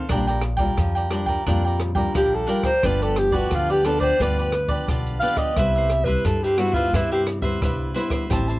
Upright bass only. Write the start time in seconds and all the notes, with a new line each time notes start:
0.09 A#1
0.78 F2
1.47 F2
2.15 A#1
2.83 G1
3.52 D2
4.20 D2
4.88 B1
5.56 C2
6.25 G2
6.93 G2
7.62 C2
8.30 A1